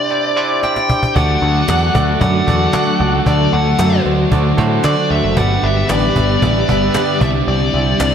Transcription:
Already playing: tine electric piano C3 D4 E4 G4 C5 D5, lead electric guitar D5
0.10 tine electric piano D4 E4 G4 C5 D5
0.36 tine electric piano D4 E4 G4 C5 D5
0.62 tine electric piano D4 E4 G4 C5 D5, lead electric guitar G5, cajon slap
0.76 cajon slap
0.89 tine electric piano D4 E4 G4 C5 D5, cajon bass
1.03 cajon bass
1.14 picked electric bass D2, distorted electric guitar D3 A3, string machine D3 F#3 A3 F#4, tine electric piano D3 A3 D4 F#4 A4 D5, lead electric guitar F#5, cajon bass
1.19 distorted electric guitar D4
1.42 picked electric bass D2, tine electric piano A3 D4 F#4 A4 D5, cajon slap
1.68 picked electric bass E2, tine electric piano A3 D4 F#4 A4 D5, cajon slap, clap
1.94 picked electric bass D2, tine electric piano A3 D4 F#4 A4 D5, cajon bass
2.20 picked electric bass F#2, distorted electric guitar D3 A3, tine electric piano A3 D4 F#4 A4 D5, lead electric guitar F#5, cajon bass
2.25 distorted electric guitar D4
2.47 picked electric bass E2, tine electric piano A3 D4 F#4 A4 D5, cajon bass
2.73 tine electric piano A3 D4 F#4 A4 D5, cajon slap, clap
2.99 picked electric bass C#2, tine electric piano A3 D4 F#4 A4 D5
3.26 picked electric bass D2, distorted electric guitar D3 A3 D4, tine electric piano D3 A3 D4 F#4 A4 D5, lead electric guitar D5, cajon bass
3.52 picked electric bass D2, tine electric piano A3 D4 F#4 A4 D5, lead electric guitar F#5, cajon slap
3.78 picked electric bass F#2, distorted electric guitar D3 A3 D4, tine electric piano A3 D4 F#4 A4 E5, cajon slap, clap
4.04 picked electric bass D2, tine electric piano A3 D4 F#4 A4 C5, distorted electric guitar A3 D4, cajon slap
4.30 picked electric bass D2, distorted electric guitar D3 A3, tine electric piano A3 D4 F#4 A4 D5, cajon bass
4.35 distorted electric guitar D4
4.57 picked electric bass A2, tine electric piano A3 D4 F#4 A4 C5, cajon bass
4.83 picked electric bass D3, tine electric piano A3 D4 F#4 A4 D5, lead electric guitar D5, cajon slap, clap
5.10 picked electric bass D2, tine electric piano A3 D4 F#4 A4 D5, lead electric guitar E5
5.24 picked electric bass F#1
5.36 picked electric bass G1, distorted electric guitar G2 D3 G3, tine electric piano G2 B3 D4 G4 B4 D5, string machine G3 B3 G4, lead electric guitar F#5, cajon bass
5.63 picked electric bass G1, tine electric piano B3 D4 G4 B4 D5, lead electric guitar E5, cajon slap
5.89 picked electric bass A1, distorted electric guitar G2 D3 G3, tine electric piano B3 D4 G4 B4 D5, lead electric guitar D5, cajon slap, clap
6.15 picked electric bass G1, distorted electric guitar D3 G3, tine electric piano B3 D4 G4 B4 E5, cajon bass
6.42 picked electric bass A1, distorted electric guitar G2 D3 G3, tine electric piano B3 D4 G4 B4 E5, lead electric guitar D5, cajon bass
6.68 picked electric bass G1, tine electric piano B3 D4 G4 B4 E5, cajon bass
6.94 tine electric piano B3 D4 G4 B4 D5, cajon slap, clap
7.20 picked electric bass C2, tine electric piano C3 D4 E4 G4 C5 D5, distorted electric guitar C3 G3 C4, string machine C4 E4, lead electric guitar E5, cajon bass
7.47 picked electric bass C2, lead electric guitar D5, cajon slap
7.73 picked electric bass C2, tine electric piano D4 E4 G4 C5 E5, cajon slap
7.99 picked electric bass C2, distorted electric guitar C3 G3 C4, tine electric piano D4 E4 G4 C5 D5, cajon slap, clap

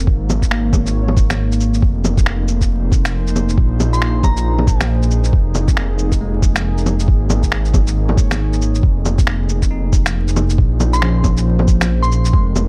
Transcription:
Already playing: ambient pad A#3
0.07 detuned saw bass G#1, kick
0.30 low bongo, cabasa
0.42 ambient pad C#5, kick, shaker
0.49 tine electric piano A#3, ambient pad D#4, finger snap
0.73 kick, low bongo, cabasa
0.86 ambient pad G#4, shaker
1.08 low bongo
1.17 kick, cabasa, shaker
1.30 finger snap, low bongo, shaker
1.52 shaker
1.61 cabasa
1.74 shaker
1.82 detuned saw bass F1, kick
2.04 ambient pad C5, low bongo, cabasa
2.17 kick, shaker
2.26 finger snap
2.48 cabasa
2.61 kick, shaker
2.92 kick, cabasa, shaker
3.05 finger snap, shaker
3.27 shaker
3.36 low bongo, cabasa
3.49 shaker
3.58 detuned saw bass A#1, kick
3.80 low bongo, cabasa
3.93 synth bell C6, shaker
4.02 finger snap
4.23 synth bell A#5, kick, low bongo, cabasa
4.37 shaker
4.59 low bongo
4.67 kick, cabasa, shaker
4.81 finger snap, low bongo, shaker
5.02 shaker
5.11 cabasa
5.24 shaker
5.33 detuned saw bass F1, kick
5.55 low bongo, cabasa
5.68 kick, shaker
5.77 finger snap
5.99 cabasa
6.12 kick, shaker
6.21 tine electric piano G#3
6.42 kick, cabasa, shaker
6.56 finger snap, shaker
6.78 shaker
6.86 low bongo, cabasa
6.99 shaker
7.08 detuned saw bass G#1, kick
7.30 low bongo, cabasa
7.43 kick, shaker
7.52 finger snap
7.65 shaker
7.74 kick, low bongo, cabasa
7.80 ambient pad C#5
7.87 shaker
8.09 low bongo
8.17 kick, cabasa, shaker
8.31 finger snap, low bongo, shaker
8.53 shaker
8.62 cabasa
8.75 shaker
8.83 detuned saw bass F1, kick
9.05 low bongo, cabasa
9.18 kick, shaker
9.27 finger snap
9.49 cabasa
9.58 ambient pad C5
9.62 kick, shaker
9.71 tine electric piano D#4
9.93 kick, cabasa, shaker
10.06 finger snap, shaker
10.28 shaker
10.36 low bongo, cabasa
10.50 shaker
10.58 detuned saw bass A#1, ambient pad A#3, kick
10.80 low bongo, cabasa
10.93 synth bell C6, shaker
11.02 tine electric piano F3 C#4, finger snap
11.24 kick, low bongo, cabasa
11.37 shaker
11.59 low bongo
11.68 kick, cabasa, shaker
11.81 finger snap, low bongo, shaker
12.03 synth bell C6, shaker
12.12 cabasa
12.25 shaker
12.33 detuned saw bass F1, tine electric piano G#3, kick
12.56 low bongo, cabasa

